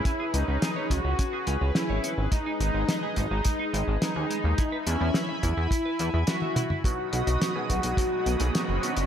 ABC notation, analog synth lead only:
X:1
M:4/4
L:1/8
Q:1/4=106
K:Bmix
V:1 name="Analog synth lead"
E D2 F3 E z | D3 D3 D2- | D C z E3 F z | F3 F3 F2 |]